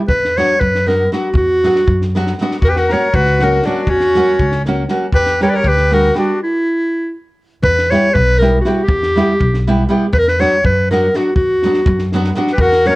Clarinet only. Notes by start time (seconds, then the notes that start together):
0.09 B4
0.37 C#5
0.60 B4
0.87 A#4
1.12 F#4
1.37 F#4
2.64 A#4
2.69 B4
2.78 A#4
2.92 C#5
3.16 B4
3.43 A#4
3.66 F#4
3.90 F#4
5.15 B4
5.43 C#5
5.50 D5
5.57 C#5
5.68 B4
5.93 A#4
6.17 F#4
6.43 E4
7.64 B4
7.91 C#5
8.14 B4
8.39 A#4
8.61 F#4
8.84 G4
10.13 B4
10.18 A#4
10.28 B4
10.40 C#5
10.65 B4
10.91 A#4
11.16 F#4
11.36 F#4
12.53 B4
12.60 A#4
12.87 C#5